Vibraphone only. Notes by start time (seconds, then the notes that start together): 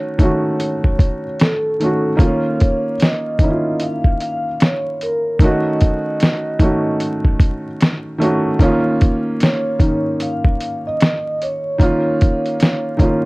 Already playing: C#5
1.42 A4
2.22 C#5
3.02 D#5
3.83 F5
4.22 F5
4.63 C#5
5.03 A#4
5.43 D#5
9.43 C#5
10.22 F5
10.87 D#5
11.42 C#5